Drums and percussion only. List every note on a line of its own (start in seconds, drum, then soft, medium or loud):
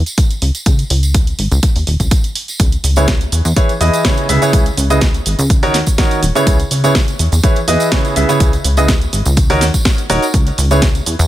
0.06 closed hi-hat soft
0.06 tambourine medium
0.18 kick loud
0.18 closed hi-hat medium
0.18 tambourine medium
0.31 closed hi-hat soft
0.31 tambourine soft
0.42 open hi-hat loud
0.55 closed hi-hat soft
0.55 tambourine medium
0.66 kick loud
0.66 closed hi-hat medium
0.66 tambourine medium
0.79 closed hi-hat soft
0.79 tambourine soft
0.90 open hi-hat loud
1.03 closed hi-hat soft
1.03 tambourine medium
1.14 kick loud
1.14 closed hi-hat medium
1.14 tambourine medium
1.27 closed hi-hat soft
1.27 tambourine soft
1.39 open hi-hat loud
1.51 closed hi-hat soft
1.51 tambourine medium
1.63 kick loud
1.63 closed hi-hat medium
1.63 tambourine medium
1.76 open hi-hat medium
1.76 tambourine soft
1.87 open hi-hat medium
2.00 kick medium
2.00 closed hi-hat soft
2.00 tambourine medium
2.11 kick loud
2.11 closed hi-hat medium
2.11 tambourine medium
2.24 closed hi-hat soft
2.24 tambourine soft
2.35 open hi-hat loud
2.48 closed hi-hat soft
2.48 tambourine medium
2.60 kick loud
2.60 closed hi-hat medium
2.60 tambourine medium
2.60 shaker soft
2.72 closed hi-hat soft
2.72 tambourine soft
2.84 open hi-hat loud
2.84 shaker medium
2.96 closed hi-hat soft
2.96 tambourine medium
2.96 shaker soft
3.08 kick loud
3.08 snare loud
3.08 closed hi-hat medium
3.08 tambourine medium
3.08 shaker soft
3.21 closed hi-hat soft
3.21 tambourine soft
3.32 open hi-hat loud
3.32 shaker medium
3.45 closed hi-hat soft
3.45 tambourine medium
3.45 shaker soft
3.56 kick loud
3.56 closed hi-hat loud
3.56 tambourine medium
3.56 shaker soft
3.69 closed hi-hat soft
3.69 tambourine soft
3.81 open hi-hat loud
3.81 shaker medium
3.93 closed hi-hat soft
3.93 tambourine medium
3.93 shaker soft
4.05 kick loud
4.05 snare loud
4.05 closed hi-hat medium
4.05 tambourine medium
4.05 shaker soft
4.17 closed hi-hat soft
4.17 tambourine soft
4.29 open hi-hat loud
4.29 shaker medium
4.42 closed hi-hat soft
4.42 tambourine medium
4.42 shaker soft
4.53 kick loud
4.53 closed hi-hat medium
4.53 tambourine medium
4.53 shaker soft
4.66 closed hi-hat soft
4.66 tambourine soft
4.77 open hi-hat loud
4.77 shaker medium
4.90 closed hi-hat soft
4.90 tambourine medium
4.90 shaker soft
5.01 kick loud
5.01 snare loud
5.01 closed hi-hat medium
5.01 tambourine medium
5.01 shaker soft
5.14 closed hi-hat soft
5.14 tambourine soft
5.26 open hi-hat loud
5.26 shaker medium
5.39 closed hi-hat soft
5.39 tambourine medium
5.39 shaker soft
5.50 kick loud
5.50 closed hi-hat medium
5.50 tambourine medium
5.50 shaker soft
5.63 open hi-hat medium
5.63 tambourine soft
5.74 snare medium
5.74 open hi-hat loud
5.74 shaker medium
5.86 kick medium
5.86 closed hi-hat soft
5.86 tambourine medium
5.86 shaker soft
5.98 kick loud
5.98 snare loud
5.98 closed hi-hat medium
5.98 tambourine medium
5.98 shaker soft
6.11 closed hi-hat soft
6.11 tambourine soft
6.23 open hi-hat loud
6.23 shaker medium
6.35 closed hi-hat soft
6.35 tambourine medium
6.35 shaker soft
6.47 kick loud
6.47 closed hi-hat medium
6.47 tambourine medium
6.47 shaker soft
6.60 closed hi-hat soft
6.60 tambourine soft
6.71 open hi-hat loud
6.71 shaker medium
6.84 closed hi-hat soft
6.84 tambourine medium
6.84 shaker soft
6.95 kick loud
6.95 snare loud
6.95 closed hi-hat medium
6.95 tambourine medium
6.95 shaker soft
7.08 closed hi-hat soft
7.08 tambourine soft
7.19 open hi-hat loud
7.19 shaker medium
7.32 closed hi-hat soft
7.32 tambourine medium
7.32 shaker soft
7.44 kick loud
7.44 closed hi-hat medium
7.44 tambourine medium
7.44 shaker soft
7.56 closed hi-hat soft
7.56 tambourine soft
7.68 open hi-hat loud
7.68 shaker medium
7.80 closed hi-hat soft
7.80 tambourine medium
7.80 shaker soft
7.92 kick loud
7.92 snare loud
7.92 closed hi-hat medium
7.92 shaker soft
8.05 closed hi-hat soft
8.05 tambourine soft
8.16 open hi-hat loud
8.16 shaker medium
8.29 closed hi-hat soft
8.29 tambourine medium
8.29 shaker soft
8.40 kick loud
8.40 closed hi-hat medium
8.40 tambourine medium
8.40 shaker soft
8.53 closed hi-hat soft
8.53 tambourine soft
8.64 open hi-hat loud
8.64 shaker medium
8.77 closed hi-hat soft
8.77 tambourine medium
8.77 shaker soft
8.88 kick loud
8.88 snare loud
8.88 closed hi-hat medium
8.88 tambourine medium
8.88 shaker soft
9.02 closed hi-hat soft
9.02 tambourine soft
9.13 open hi-hat loud
9.13 shaker medium
9.25 closed hi-hat soft
9.25 tambourine medium
9.25 shaker soft
9.37 kick loud
9.37 closed hi-hat medium
9.37 tambourine medium
9.37 shaker soft
9.50 open hi-hat medium
9.50 tambourine soft
9.61 snare medium
9.61 open hi-hat loud
9.61 shaker medium
9.74 kick medium
9.74 closed hi-hat soft
9.74 tambourine medium
9.74 shaker soft
9.85 kick loud
9.85 snare loud
9.85 closed hi-hat medium
9.85 tambourine medium
9.85 shaker soft
9.98 closed hi-hat soft
9.98 tambourine soft
10.10 open hi-hat loud
10.10 shaker medium
10.22 closed hi-hat soft
10.22 tambourine medium
10.22 shaker soft
10.34 kick loud
10.34 closed hi-hat medium
10.34 tambourine medium
10.34 shaker soft
10.47 closed hi-hat soft
10.47 tambourine soft
10.58 open hi-hat loud
10.58 shaker medium
10.71 closed hi-hat soft
10.71 tambourine medium
10.71 shaker soft
10.82 kick loud
10.82 snare loud
10.82 closed hi-hat medium
10.82 tambourine medium
10.82 shaker soft
10.95 closed hi-hat soft
10.95 tambourine soft
11.06 open hi-hat loud
11.06 shaker medium
11.19 closed hi-hat soft
11.19 tambourine medium
11.19 shaker soft